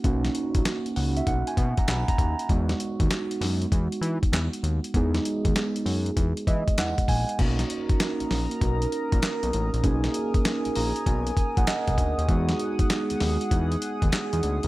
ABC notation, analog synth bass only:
X:1
M:4/4
L:1/16
Q:"Swing 16ths" 1/4=98
K:B
V:1 name="Analog synth bass" clef=bass
B,,,2 z A,,, z2 C,,2 B,,, z B,, z B,,, z D,, z | E,,2 z D,, z2 F,,2 E,, z E, z E,, z D,, z | E,,2 z D,, z2 F,,2 E,, z E, z E,, z A,,, z | B,,,2 z A,,, z A,,, A,,, z B,,,2 z A,,, z B,,, =A,,, ^A,,, |
B,,,2 z A,,, z A,,, A,,, z B,,,2 z A,,, z B,,, =D,, ^D,, | E,,2 z D,, z D,, D,, z E,,2 z D,, z E,, =D,, ^D,, |]